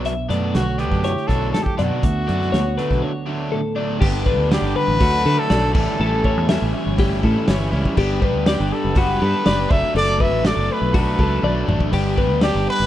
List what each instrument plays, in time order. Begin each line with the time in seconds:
Already playing: fingered electric bass B1, overdriven electric guitar B2 F#3 B3 D4, clean electric guitar B2 B3 D4
0.05 clean electric guitar E5, closed hi-hat
0.29 fingered electric bass F#2, overdriven electric guitar B2 F#3 B3 D4, clean electric guitar A3 D5, snare, closed hi-hat
0.54 fingered electric bass B1, clean electric guitar D3 C#5, trumpet F#4, snare, closed hi-hat
0.78 overdriven electric guitar B2 F#3 B3 D4, trumpet G4, clean electric guitar B4, closed hi-hat
0.91 fingered electric bass F#2, kick, snare
1.04 clean electric guitar E4 C#5, closed hi-hat
1.17 snare
1.27 fingered electric bass B1, clean electric guitar F#2, overdriven electric guitar B2 F#3 B3 D4, trumpet A4, kick, closed hi-hat
1.53 trumpet A4, clean electric guitar A4, snare, closed hi-hat
1.63 trumpet G4, kick
1.77 fingered electric bass F#2, overdriven electric guitar B2 F#3 B3 D4, clean electric guitar B2 D5, trumpet F#4, closed hi-hat
2.03 fingered electric bass D2, clean electric guitar D2 D3 E5, kick, closed hi-hat
2.07 clean electric guitar B3 D4
2.27 fingered electric bass F#2, overdriven electric guitar D3 F#3 A3 D4, clean electric guitar D4 D5, closed hi-hat
2.42 snare
2.52 fingered electric bass D2, clean electric guitar B3 C#5, snare, closed hi-hat
2.77 clean electric guitar D3 B4, overdriven electric guitar D3 F#3 A3 D4, closed hi-hat
2.91 fingered electric bass B1, kick, snare
3.02 clean electric guitar D4 C#5
3.27 overdriven electric guitar D3 F#3 A3 D4, clean electric guitar D4
3.52 clean electric guitar A2 A4
3.76 overdriven electric guitar D3 F#3 A3 D4, clean electric guitar D5
4.00 fingered electric bass G1, overdriven electric guitar G2 D3 G3 B3 D4, clean electric guitar G4, kick, crash
4.25 overdriven electric guitar G3 B3 D4, clean electric guitar B4, kick
4.37 fingered electric bass D2
4.49 overdriven electric guitar D3 G3 B3 D4, trumpet G4, clean electric guitar D5, snare, open hi-hat
4.62 fingered electric bass G1
4.76 clean electric guitar B4, trumpet B4
4.88 fingered electric bass A1
4.99 fingered electric bass D2, overdriven electric guitar D3 F#3 A3 D4, clean electric guitar F#4, kick, open hi-hat
5.24 fingered electric bass D3, overdriven electric guitar F#3 A3 D4, clean electric guitar A4
5.39 trumpet A4
5.48 fingered electric bass B1, overdriven electric guitar D3 F#3 A3 D4, clean electric guitar D5, snare, open hi-hat
5.73 fingered electric bass A1, overdriven electric guitar A2 E3 G3 C#4 E4, trumpet A4, kick, crash
5.98 fingered electric bass A1, overdriven electric guitar A2 E3 G3 C#4 E4, clean electric guitar A4
6.24 overdriven electric guitar G3 C#4 E4, clean electric guitar C#5, kick
6.37 fingered electric bass E2
6.48 overdriven electric guitar E3 G3 C#4 E4, clean electric guitar E5, snare, open hi-hat
6.62 fingered electric bass A1
6.74 clean electric guitar C#5
6.87 fingered electric bass G1
6.96 overdriven electric guitar A2 E3 G3 C#4 E4, clean electric guitar G4, kick, open hi-hat
7.21 fingered electric bass A2, overdriven electric guitar G3 C#4 E4, clean electric guitar A4, kick
7.46 fingered electric bass G1, overdriven electric guitar E3 G3 C#4 E4, clean electric guitar C#5, snare, open hi-hat
7.71 fingered electric bass C#2, overdriven electric guitar G3 C#4 E4
7.85 kick
7.96 fingered electric bass G1, overdriven electric guitar G3 B3 D4 G4, clean electric guitar G4, kick, crash
8.21 overdriven electric guitar B3 D4 G4, clean electric guitar B4, kick
8.35 fingered electric bass D2
8.46 overdriven electric guitar G3 B3 D4 G4, trumpet G4, clean electric guitar D5, snare, open hi-hat
8.60 fingered electric bass G1
8.72 trumpet A4, clean electric guitar B4
8.85 fingered electric bass F#1
8.95 overdriven electric guitar G3 B3 D4 G4, clean electric guitar F#4, trumpet B4, kick, open hi-hat
9.20 fingered electric bass G2, overdriven electric guitar B3 D4 G4, clean electric guitar A4
9.45 fingered electric bass F#1, overdriven electric guitar G3 B3 D4 G4, clean electric guitar D5, snare, open hi-hat
9.69 fingered electric bass F#1, overdriven electric guitar F#3 A3 D4 A4, trumpet E5, kick
9.95 fingered electric bass F#1, overdriven electric guitar F#3 A3 D4 A4, clean electric guitar A4, trumpet D5, open hi-hat
10.19 overdriven electric guitar A3 D4 A4, clean electric guitar B4, trumpet E5, kick
10.33 fingered electric bass A1
10.44 overdriven electric guitar F#3 A3 D4 A4, clean electric guitar D5, trumpet D5, snare, open hi-hat
10.57 fingered electric bass F#1
10.70 clean electric guitar B4, trumpet B4
10.82 fingered electric bass B1
10.93 overdriven electric guitar F#3 A3 D4 A4, clean electric guitar F#4, kick, open hi-hat
10.97 trumpet B4
11.18 fingered electric bass C#2, overdriven electric guitar A3 D4 A4, clean electric guitar A4, kick
11.42 fingered electric bass B1, overdriven electric guitar F#3 A3 D4 A4, clean electric guitar D5, high tom
11.66 fingered electric bass A1, overdriven electric guitar A3 D4 A4, mid tom
11.80 kick
11.91 fingered electric bass G1, overdriven electric guitar G3 B3 D4 G4, clean electric guitar G4, kick, open hi-hat, crash
12.16 overdriven electric guitar B3 D4 G4, clean electric guitar B4, kick
12.30 fingered electric bass D2
12.41 overdriven electric guitar G3 B3 D4 G4, trumpet G4, clean electric guitar D5, snare, open hi-hat
12.55 fingered electric bass G1
12.68 clean electric guitar B4, trumpet B4
12.80 fingered electric bass F#1